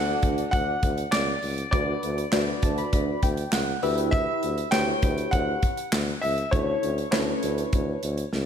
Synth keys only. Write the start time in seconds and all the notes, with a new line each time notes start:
Already playing: D4 F#4 A4 D5
1.73 D4 F#4 B4 D5
2.33 D4 F#4 B4 D5
2.63 A5
2.78 B5
2.93 B5
3.23 G5
3.53 F#5
3.83 E4 G4 B4 E5
4.73 E4 G4 B4 C#5
6.52 C#4 E4 A4 C#5
7.12 C#4 E4 A4 B4